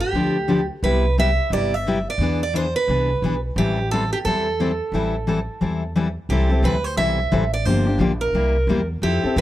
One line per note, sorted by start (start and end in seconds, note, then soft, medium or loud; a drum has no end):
0.00 0.65 G4 medium
0.13 0.68 D2 medium
0.13 0.35 D3 medium
0.13 0.36 F3 medium
0.13 0.36 B3 medium
0.13 0.36 D4 medium
0.13 0.36 G4 medium
0.48 0.59 D3 medium
0.48 0.60 F3 medium
0.48 0.60 B3 medium
0.48 0.60 D4 medium
0.48 0.60 G4 medium
0.83 1.37 C2 medium
0.83 1.04 C3 medium
0.83 1.04 G3 medium
0.83 1.05 B3 medium
0.83 1.05 E4 medium
0.83 1.05 G4 medium
0.83 1.15 B4 medium
1.18 1.28 C3 medium
1.18 1.29 G3 medium
1.18 1.29 B3 medium
1.18 1.29 E4 medium
1.18 1.29 G4 medium
1.18 1.53 E5 medium
1.50 2.05 G1 medium
1.50 1.73 C3 medium
1.50 1.73 G3 medium
1.50 1.73 B3 medium
1.50 1.73 E4 medium
1.50 1.73 G4 medium
1.50 1.74 D5 loud
1.74 2.08 E5 medium
1.87 1.97 C3 medium
1.87 1.98 G3 medium
1.87 1.97 B3 medium
1.87 1.98 E4 medium
1.87 1.98 G4 medium
2.10 2.40 D5 medium
2.18 2.73 E2 medium
2.18 2.41 E3 medium
2.18 2.41 B3 medium
2.18 2.41 D4 medium
2.22 2.42 G#4 medium
2.43 2.55 D5 medium
2.54 2.65 E3 medium
2.54 2.65 B3 medium
2.54 2.65 D4 medium
2.54 2.66 G#4 medium
2.54 2.74 C5 medium
2.76 3.40 B4 medium
2.88 3.17 C2 medium
2.88 3.09 E3 medium
2.88 3.09 B3 medium
2.88 3.09 D4 medium
2.88 3.10 G#4 medium
3.22 3.51 B1 medium
3.22 3.34 E3 medium
3.22 3.34 B3 medium
3.22 3.34 D4 medium
3.22 3.35 G#4 medium
3.56 4.11 A1 medium
3.56 3.78 E3 medium
3.56 3.78 G3 medium
3.56 3.78 C4 medium
3.56 3.78 E4 medium
3.56 3.91 G4 medium
3.56 3.78 A4 medium
3.91 4.02 E3 medium
3.91 4.03 G3 medium
3.91 4.03 C4 medium
3.91 4.03 E4 medium
3.91 4.10 A4 medium
3.91 4.03 A4 medium
4.13 4.18 G4 medium
4.25 4.79 E2 medium
4.25 4.47 E3 medium
4.25 4.46 G3 medium
4.25 4.47 C4 medium
4.25 4.47 E4 medium
4.25 5.92 A4 medium
4.25 4.47 A4 medium
4.60 4.70 E3 medium
4.60 4.70 G3 medium
4.60 4.71 C4 medium
4.60 4.71 E4 medium
4.60 4.71 A4 medium
4.92 5.47 A1 medium
4.92 5.14 E3 medium
4.92 5.14 G3 medium
4.92 5.15 C4 medium
4.92 5.15 E4 medium
4.92 5.15 A4 medium
5.27 5.38 E3 medium
5.27 5.38 G3 medium
5.27 5.38 C4 medium
5.27 5.39 E4 medium
5.27 5.39 A4 medium
5.61 6.16 E2 medium
5.61 5.82 E3 medium
5.61 5.82 G3 medium
5.61 5.82 C4 medium
5.61 5.83 E4 medium
5.61 5.83 A4 medium
5.96 6.07 E3 medium
5.96 6.07 G3 medium
5.96 6.07 C4 medium
5.96 6.07 E4 medium
5.96 6.07 A4 medium
6.29 6.62 C2 medium
6.29 6.50 C3 medium
6.29 6.50 E3 medium
6.29 6.50 G3 medium
6.29 6.50 C4 medium
6.29 6.50 E4 medium
6.29 6.65 G4 medium
6.29 6.48 A4 medium
6.49 6.63 G3 soft
6.49 6.62 C4 medium
6.49 6.63 E4 soft
6.49 6.63 A4 medium
6.62 6.96 D2 medium
6.62 6.74 C3 medium
6.62 6.75 E3 medium
6.62 6.75 G3 medium
6.62 6.75 C4 medium
6.62 6.75 E4 medium
6.62 6.75 A4 medium
6.62 6.84 B4 medium
6.84 6.97 C5 medium
6.97 7.30 B1 medium
6.97 7.18 C3 medium
6.97 7.18 E3 medium
6.97 7.19 G3 medium
6.97 7.19 C4 medium
6.97 7.19 E4 medium
6.97 7.19 A4 medium
6.97 7.53 E5 loud
7.31 7.65 A1 medium
7.31 7.43 C3 medium
7.31 7.43 E3 medium
7.31 7.43 G3 medium
7.31 7.43 C4 loud
7.31 7.43 E4 medium
7.31 7.44 A4 medium
7.54 7.65 D5 medium
7.65 7.97 G1 medium
7.65 7.86 D3 medium
7.65 7.86 F3 medium
7.65 7.86 A#3 medium
7.65 7.87 D4 medium
7.65 7.86 G4 medium
7.65 8.00 C5 medium
7.87 7.99 A#3 medium
7.87 8.00 D4 soft
7.87 8.00 G4 medium
7.98 8.32 A#1 medium
7.98 8.11 D3 medium
7.98 8.11 F3 medium
7.98 8.11 A#3 medium
7.98 8.12 D4 medium
7.98 8.12 G4 medium
8.21 8.85 A#4 medium
8.33 8.67 C2 medium
8.33 8.55 C3 medium
8.33 8.55 G3 medium
8.33 8.55 A#3 medium
8.33 8.55 E4 medium
8.33 8.55 G4 medium
8.67 9.01 E2 medium
8.67 8.80 C3 medium
8.67 8.80 G3 medium
8.67 8.80 A#3 medium
8.67 8.80 E4 medium
8.67 8.80 G4 medium
9.02 9.21 F2 medium
9.02 9.23 F3 medium
9.02 9.23 C4 medium
9.02 9.23 E4 medium
9.02 9.38 G4 medium
9.02 9.22 A4 medium
9.23 9.36 C4 soft
9.23 9.36 E4 medium
9.23 9.36 A4 medium
9.23 muted upright bass stroke soft
9.36 9.41 G2 medium
9.36 9.41 F3 medium
9.36 9.41 C4 medium
9.36 9.41 E4 loud
9.36 9.41 A4 medium